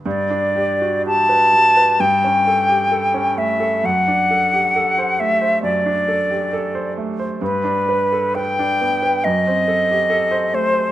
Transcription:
<<
  \new Staff \with { instrumentName = "Flute" } { \time 4/4 \key g \major \tempo 4 = 67 d''4 a''4 g''4. e''8 | fis''4. e''8 d''4. r8 | b'4 g''4 dis''4. c''8 | }
  \new Staff \with { instrumentName = "Grand piano" } { \time 4/4 \key g \major g,16 d'16 g'16 fis'16 g'16 b'16 g16 b'16 g,16 cis'16 a'16 g'16 a'16 cis'16 a16 a'16 | fis,16 d'16 a'16 g'16 a'16 c''16 a16 c''16 fis,16 d'16 a'16 g'16 a'16 c''16 a16 c''16 | g,16 d'16 b'16 a'16 b'16 d'16 b16 b'16 fis,16 c'16 a'16 g'16 a'16 c''16 a16 c''16 | }
>>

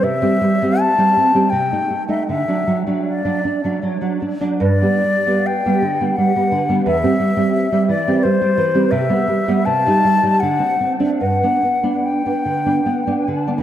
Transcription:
<<
  \new Staff \with { instrumentName = "Flute" } { \time 3/4 \key g \major \tempo 4 = 79 e''4 a''4 g''8. e''16 | e''8. r16 d''4 r4 | d''4 g''4 fis''4 | e''4. d''8 c''4 |
e''4 a''4 fis''8. r16 | fis''4 g''4. r8 | }
  \new Staff \with { instrumentName = "Nylon-string guitar" } { \time 3/4 \key g \major c16 <g c'>16 g16 <g c'>8 <g c'>16 c'16 <g c'>16 c16 <a ees'>16 a16 <a ees'>16 | d16 <fis d'>16 fis16 <fis d'>8 <fis d'>16 d'16 <fis d'>16 fis16 <fis d'>16 d'16 <fis d'>16 | g,16 <g b>16 g16 <g b>8 <g b>16 d16 <g b>16 g16 <g b>16 d16 <g b>16 | e,16 <g c'>16 g16 <g c'>8 <g c'>16 e16 <g c'>16 g16 <g c'>16 e16 <g c'>16 |
c16 <g b>16 g16 <g b>16 c16 <g ees'>16 g16 <g ees'>16 d16 <c' d'>16 c'16 <c' d'>16 | g,16 <b d'>16 b16 <b d'>8 <b d'>16 d16 <b d'>16 b16 <b d'>16 d16 <b d'>16 | }
>>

